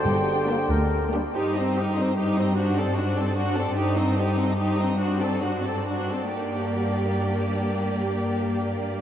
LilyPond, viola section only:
\new Staff \with { instrumentName = "Viola section" } { \time 6/8 \key g \minor \tempo 4. = 93 r4 <bes d'>8 r4 <bes d'>8 | ees'8 c'8 ees'8 c'8 ees'8 c'8 | d'8 c'8 d'8 c'8 d'8 c'8 | ees'8 c'8 ees'8 c'8 ees'8 c'8 |
d'8 c'8 d'8 c'8 d'8 c'8 | bes2.~ | bes2. | }